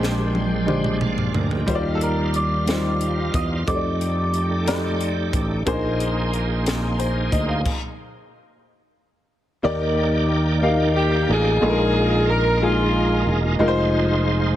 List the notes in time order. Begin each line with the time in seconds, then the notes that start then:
Already playing: A#1 A#2 G#3 D4 G4 C5
0.03 snare
0.35 high tom
0.66 G#3 D4 G4 C5, mid tom
0.84 mid tom
1.01 D5 F5, mid tom
1.18 floor tom
1.34 D2 A#4 D5, floor tom
1.51 G4 A#4, floor tom
1.66 D#2 D#3 G3 D#4 F4 C5 C#5, kick, closed hi-hat
1.75 D5 F5
1.95 A4
2.01 A#4, closed hi-hat
2.34 D5, closed hi-hat
2.66 G3 D#4 F4 C5, snare, closed hi-hat
3.01 closed hi-hat
3.34 E2 D#5, kick, closed hi-hat
3.67 F2 A3 D#4 G4 C5 D5, kick, closed hi-hat
3.76 D5
4.01 closed hi-hat
4.34 closed hi-hat
4.66 A3 D#4 G4 C5 D5, snare, closed hi-hat
5.01 closed hi-hat
5.33 A1, kick, closed hi-hat
5.66 A#1 A#2 A#3 D4 D#4 G#4 C5, kick, closed hi-hat
6.00 closed hi-hat
6.33 closed hi-hat
6.66 snare, closed hi-hat
6.99 C5, closed hi-hat
7.32 D2 D#5, kick, closed hi-hat
7.49 F5
7.66 kick, crash
9.63 D#2 D#3 A#3 D#4 G4 D5 G5
10.61 A#3 D#4 G4 F5
10.96 G4
11.29 A1 D#4 F4 G#4
11.61 A#1 A#2 G#3 D4 D#4 F4 A4 A#4
11.69 D#4 A#4
12.29 A#4
12.61 G#3 D#4 F4 G#4
13.27 E1
13.59 F1 G3 G#3 D#4 F4 A#4 C5
13.68 G#3 C5